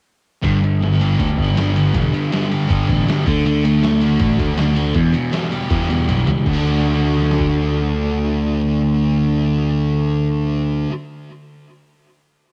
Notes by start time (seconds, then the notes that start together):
0.42 G1 G2 D3 G3, kick, closed hi-hat
0.62 G2 D3, closed hi-hat
0.80 G2 D3 B3, snare, closed hi-hat
0.99 G2 D3 G3 G4, closed hi-hat
1.18 D2 G2 D3 D4, kick, closed hi-hat
1.36 G1 G2 D3 B3, kick, closed hi-hat
1.56 G2 D3 G3, snare, closed hi-hat
1.73 G2 D3 B3, closed hi-hat
1.93 E1 G2 D3, kick, closed hi-hat
2.12 G2 D3, closed hi-hat
2.31 G2 D3 G3 B3, snare, closed hi-hat
2.50 G2 D3 G4, closed hi-hat
2.68 G1 G2 D3 G3 D4, kick, closed hi-hat
2.88 A1 G2 D3 B3, kick, closed hi-hat
3.07 G2 D3 G3, snare, closed hi-hat
3.26 D2 D3 A3 D4, kick, closed hi-hat
3.46 D2 D3 A3 D4, closed hi-hat
3.64 D3 A3, closed hi-hat
3.83 D3 A3, snare, closed hi-hat
4.01 D3 A3 D4 F#4, closed hi-hat
4.19 A1 D3 A3 D4, kick, closed hi-hat
4.39 D2 D3 A3, kick, closed hi-hat
4.57 D3 A3 D4, snare, closed hi-hat
4.76 D3 A3, closed hi-hat
4.94 E2 B2 E3, kick, closed hi-hat
5.13 E2 B2, closed hi-hat
5.31 E2 B2 E3 G3, snare, closed hi-hat
5.51 E2 B2 G4, closed hi-hat
5.70 E2 B2 E3 B3, kick, closed hi-hat, high tom
5.90 E2 B2 G3, closed hi-hat
6.09 B1 E2 B2 E3, closed hi-hat, mid tom
6.27 C#2 E2 B2 G3, closed hi-hat, floor tom
6.46 D2 D3 A3 D4, kick, crash
6.50 F#4
7.22 snare
7.31 snare
7.40 kick